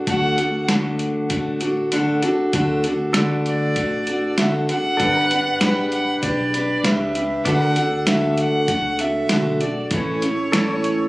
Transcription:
0.07 D2 D3 A3 D4 F#4 A4 F#5, kick, closed hi-hat
0.38 D4 F#4 A4, closed hi-hat
0.69 D3 A3 D4 F#4 A4, snare, closed hi-hat
0.99 closed hi-hat
1.29 A1 A3 D4 F#4 A4, kick, closed hi-hat
1.61 D4 F#4 A4, closed hi-hat
1.92 D3 A3 D4 F#4 A4, closed hi-hat
2.22 D4 F#4 A4, closed hi-hat
2.53 D2 D3 A3 D4 F#4 A4, kick, closed hi-hat
2.84 F#4 A4, closed hi-hat
2.88 D4
3.13 D3 A3 D4 A4 D5, snare, closed hi-hat
3.17 F#4 A4
3.46 D5, closed hi-hat
3.76 A1 A3 D4 F#4 A4, kick, closed hi-hat
4.07 D4 F#4 A4, closed hi-hat
4.38 D3 A3 D4 F#4 A4 E5, snare, closed hi-hat
4.69 D4 F#4 A4 F#5, closed hi-hat
4.97 G1 G3 A4 D5, kick, closed hi-hat
5.01 D4 G4 B4
5.22 B4
5.31 D4 G4 B4, closed hi-hat
5.61 A1 G3 D4 G4 B4, snare, closed hi-hat
5.91 F#5, closed hi-hat
6.23 B1 G3 D4 G4 B4 D5, kick, closed hi-hat
6.54 D4 G4 B4, closed hi-hat
6.83 C#2 G3 D4 G4 B4 E5, snare, closed hi-hat
7.15 D4 G4 B4, closed hi-hat
7.45 D2 D3 A3 D4 F#4 A4 B4 D5 F#5, kick, closed hi-hat
7.70 A4
7.76 D4 F#4 A4, closed hi-hat
8.07 D3 A3 D4 F#4 A4 E5, snare, closed hi-hat
8.38 F#5, closed hi-hat
8.68 C#2 A3 D4 F#4 A4, kick, closed hi-hat
8.99 D4 F#4 A4 E5, closed hi-hat
9.29 B1 D3 A3 D4 F#4 A4, snare, closed hi-hat
9.61 D4 F#4 A4 D5, closed hi-hat
9.91 A1 A2 E3 A3 C#4 E4 A4 C#5, kick, closed hi-hat
10.22 A3 C#4 E4 A4, closed hi-hat
10.52 A2 E3 A3 C#4 E4 A4 D5, snare, closed hi-hat
10.73 C#5
10.84 closed hi-hat

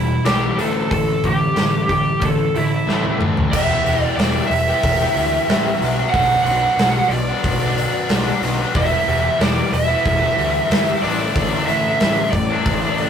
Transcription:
Already playing: E1 E2 B2 E3 G3 E4 B4 E5 B5
0.25 B1 E2 B2 E3 G3 B3 G4, snare, open hi-hat
0.57 A1 A2 D3 E3 A3 A4 D5 D6, open hi-hat
0.91 A1 A2 D3 E3 A4, kick, open hi-hat
1.24 A1 A2 D3 E3 G4, kick, open hi-hat
1.56 A1 A2 D3 E3, snare, open hi-hat
1.88 A2 D3 E3 G4, kick, open hi-hat
2.20 A1 A2 D3 E3, kick, open hi-hat
2.25 A4
2.55 A1 A2 D3 E3 E4, open hi-hat
2.87 A1 A2 D3 E3 A3, snare
3.04 high tom
3.19 A1 A2 D3 E3 A3, mid tom
3.37 floor tom
3.51 E1 E3 B3 E4 G4 B4 E5 B5, kick, crash
3.69 B3 E4 G4
3.84 E1 E3 B3 E4 G4, open hi-hat
4.03 D5
4.16 E1 E3 D5, open hi-hat
4.20 B3 E4 G4, snare
4.47 E1 E5
4.51 muted overdriven electric guitar stroke, open hi-hat
4.68 B3 E4 G4
4.83 E1, kick, open hi-hat
5.00 B3 E4 G4
5.16 D2 E3 B3 E4 G4, open hi-hat
5.48 A1 E3 B3 E4 G4, snare, open hi-hat
5.66 B3 E4 G4
5.81 B1 B2 F#3 B3 D4 F#4 D5, open hi-hat
5.98 B3 D4 F#4
6.10 B2 F#5
6.14 B1 F#3 B3 D4 F#4, kick, open hi-hat
6.31 B3 D4 F#4
6.43 B1 F#5, open hi-hat
6.47 F#3 B3 D4 F#4
6.77 B1 B2 F#3 B3 D4, snare, open hi-hat
6.82 F#4
7.08 B1 D5, open hi-hat
7.13 muted overdriven electric guitar stroke
7.28 B3 D4 F#4
7.44 B1, kick, open hi-hat
7.61 B3 D4 F#4
7.76 F#3 B3 D4 F#4, open hi-hat
8.08 B1 B2 F#3 B3 D4 F#4, snare, open hi-hat
8.24 B3 D4 F#4
8.40 B1 F#3 B3 D4 F#4, snare, open hi-hat
8.56 B3 D4 F#4
8.73 E1 E3 G3 B3 E4 G4 E5, kick, open hi-hat
8.90 G3 B3 E4
9.06 E1 E3 G3 B3 E4, open hi-hat
9.38 E1 E3 G3 B3 E4 D5, snare, open hi-hat
9.72 E1 E5, muted overdriven electric guitar stroke, open hi-hat
9.87 G3 B3 E4
10.05 E1, kick, open hi-hat
10.20 G3 B3 E4
10.36 D2 E3 G3 B3 E4, open hi-hat
10.69 G1 E3 G3 B3 E4, snare, open hi-hat
10.87 G3 B3 E4
11.01 A1 A2 D3 A3 D4 E4 A4 D5 D6, open hi-hat
11.18 A3 D4 E4
11.35 A1 A2 D3 A3 D4 E4, kick, open hi-hat
11.51 A3 D4 E4
11.66 A1 D3 A3 D4 E4 E5, open hi-hat
11.99 A1 A2 D3 A3 D4 E4, snare, open hi-hat
12.31 A1 D5, muted overdriven electric guitar stroke, kick, open hi-hat
12.50 A3 D4 E4
12.66 A1, kick, open hi-hat
12.82 A3 D4 E4
12.98 D3 A3 D4 E4, open hi-hat

